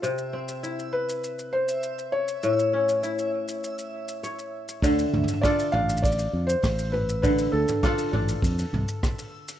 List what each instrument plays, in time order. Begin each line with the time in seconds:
Already playing: kora A4, synth texture E5
0.02 kora C3, felt piano C5, shaker
0.18 shaker
0.33 kora C4
0.48 shaker
0.63 kora E4, shaker
0.79 shaker
0.93 felt piano B4
1.09 shaker
1.24 shaker
1.39 shaker
1.53 felt piano C5
1.68 shaker
1.83 shaker
1.99 shaker
2.12 felt piano C#5
2.28 shaker
2.43 kora A2, shaker
2.59 shaker
2.73 kora C#4
2.89 shaker
3.03 kora E4, shaker
3.19 shaker
3.48 shaker
3.64 shaker
3.79 shaker
4.08 shaker
4.23 kora C#5, shaker
4.39 shaker
4.69 shaker
4.82 fingered electric bass D2, kora D3, synth texture E6, kick, open hi-hat, shaker
4.99 open hi-hat, shaker
5.13 fingered electric bass D2, mid tom
5.23 mid tom
5.28 open hi-hat, shaker
5.33 mid tom
5.41 kora D4 F4 A4, felt piano D5, kick, cross-stick, open hi-hat, shaker
5.59 open hi-hat, shaker
5.72 fingered electric bass A1, kora D4, felt piano F5, mid tom
5.88 open hi-hat, shaker
5.97 shaker
6.02 felt piano D5, kick, open hi-hat, shaker
6.12 shaker
6.18 open hi-hat, shaker
6.33 fingered electric bass F2
6.47 felt piano C5, shaker
6.62 fingered electric bass A1, kick, cross-stick, open hi-hat, shaker
6.79 open hi-hat, shaker
6.84 open hi-hat
6.89 felt piano B4, open hi-hat
6.93 mid tom, open hi-hat
6.99 open hi-hat
7.04 open hi-hat
7.09 shaker
7.22 kora D3, felt piano B4, kick, open hi-hat, shaker
7.38 open hi-hat, shaker
7.52 fingered electric bass D2, felt piano A4
7.68 mid tom, open hi-hat, shaker
7.83 kora D4 F4 A4, kick, cross-stick, open hi-hat, shaker
7.98 open hi-hat, shaker
8.08 open hi-hat
8.13 fingered electric bass A1, kora D4, mid tom
8.18 open hi-hat
8.28 open hi-hat, shaker
8.42 fingered electric bass F2, kick, open hi-hat, shaker
8.59 open hi-hat, shaker
8.73 fingered electric bass C2, mid tom
8.88 shaker
9.03 kick, cross-stick, shaker
9.19 open hi-hat, shaker
9.48 open hi-hat, shaker